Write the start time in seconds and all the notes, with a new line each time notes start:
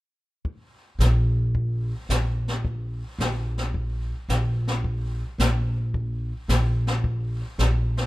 0.45 brush sweep, kick
0.99 A#1, snare, hi-hat pedal
1.55 brush sweep, kick
2.09 A#1, snare, hi-hat pedal
2.48 snare
2.65 brush sweep, kick
3.19 A#1, snare, hi-hat pedal
3.58 snare
3.74 brush sweep, kick
4.29 A#1, snare, hi-hat pedal
4.67 snare
4.84 brush sweep, kick
5.38 A#1, snare, hi-hat pedal
5.94 brush sweep, kick
6.48 A#1, snare, hi-hat pedal
6.87 snare
7.04 brush sweep, kick
7.58 A#1, snare, hi-hat pedal
7.97 snare